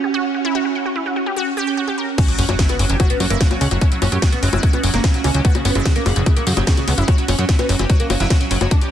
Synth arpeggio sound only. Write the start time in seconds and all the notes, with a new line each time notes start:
0.04 G4
0.14 F#4
0.34 F#4
0.45 E4
0.55 F#4
0.65 F#4
0.75 F#5
0.85 F#4
0.96 E4
1.06 F#4
1.16 F#4
1.26 G4
1.37 F#4
1.57 G4
1.67 G5
1.77 F#4
1.88 G4
1.98 A#4
2.18 F#4
2.28 F#4
2.39 F#5
2.49 F#4
2.59 E4
2.69 F#4
2.79 F#4
2.90 G4
3.00 F#4
3.20 F#4
3.30 E4
3.41 F#4
3.51 F#4
3.61 F#5
3.71 F#4
3.81 E4
3.92 F#4
4.02 F#4
4.12 G4
4.22 F#4
4.43 F#4
4.53 E4
4.63 F#4
4.73 F#4
4.84 F#5
4.94 F#4
5.04 E4
5.14 F#4
5.24 F#4
5.35 G4
5.45 F#4
5.65 F#4
5.75 E4
5.86 F#4
5.96 F#4
6.06 F#5
6.16 F#4
6.26 E4
6.37 F#4
6.47 F#4
6.57 G4
6.67 F#4
6.88 F#4
6.98 E4
7.08 F#4
7.18 F#4
7.28 F#5
7.39 F#4
7.49 E4
7.59 F#4
7.69 F#4
7.79 G4
7.90 F#4
8.10 F#4
8.20 E4
8.30 F#4
8.41 F#4
8.51 F#5
8.61 F#4
8.71 F#4
8.81 G4